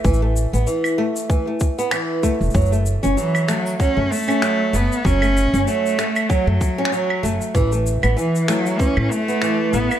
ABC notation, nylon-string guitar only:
X:1
M:4/4
L:1/16
Q:"Swing 16ths" 1/4=96
K:F#m
V:1 name="Nylon-string guitar"
E, A,2 B, E,2 A,2 E, A,2 B, E,2 A,2 | F, A,2 C F,2 A,2 F, A,2 C F,2 A,2 | F, A,2 C F,2 A,2 F, A,2 C F,2 A,2 | E, A,2 B, E,2 A,2 E, A,2 B, E,2 A,2 |]